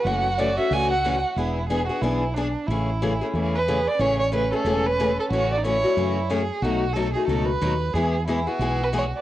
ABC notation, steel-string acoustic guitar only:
X:1
M:4/4
L:1/8
Q:"Swing" 1/4=182
K:A
V:1 name="Steel-string acoustic guitar"
[C,E,A,CF] z [C,E,A,CF] [A,CF] [C,E,A,CF] z [C,E,A,CF] z | [E,B,DG] z [E,B,DG] [B,DG] [E,B,DG] z [E,B,DG] z | [C,E,A,CG] z [C,E,A,CG] [A,CG] [C,E,A,CG] z [C,E,A,CG] z | [C,E,A,CG] z [C,E,A,CG] [A,CG] [C,E,A,CG] z [C,E,A,CG] z |
[C,E,A,CF] z [C,E,A,CF] [A,CF] [C,E,A,CF] z [C,E,A,CF] z | [B,,F,A,^DF] z [B,,F,A,DF] [A,DF] [B,,F,A,DF] z [B,,F,A,DF] z | [E,G,B,EG] z [E,G,B,EG] [B,EG] [E,G,B,EG] z [E,G,B,EG] z |]